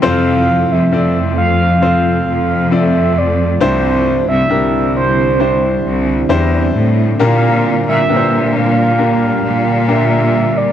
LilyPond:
<<
  \new Staff \with { instrumentName = "Soft synth lead" } { \time 4/4 \key f \major \tempo 4 = 67 f''8. e''8. f''4. e''8 d''8 | c''8. e''8. c''4. r4 | f''8. e''8. f''4. e''8. d''16 | }
  \new Staff \with { instrumentName = "Grand piano" } { \time 4/4 \key f \major <c' f' a' c''>4 <c' f' a' d''>4 <c' f' a' c''>4 <c' f' a' d''>4 | <d' e' g' c''>4 <d' e' g' bes'>4 <d' e' g' c''>4 <d' e' g' c''>4 | <bes d' g' bes'>4 <bes d' g' b' c''>4 <bes d' g' bes'>4 <bes d' g' bes'>4 | }
  \new Staff \with { instrumentName = "Grand piano" } { \clef bass \time 4/4 \key f \major c4. r2 r8 | g,4. r2 r8 | bes,4. r2 r8 | }
  \new Staff \with { instrumentName = "Ambient pad" } { \time 4/4 \key f \major << { <a f'>1 | <c' e'>1 | <bes g'>1 | } \\ { <c f>1 | <d g>1~ | <d g>1 | } >> }
  \new Staff \with { instrumentName = "Cello section" } { \clef bass \time 4/4 \key f \major f,8. f,16 f,4. f,4. | c,8. c,16 c,4. c,8 e,8 a,8 | bes,8. bes,16 bes,4. bes,4. | }
>>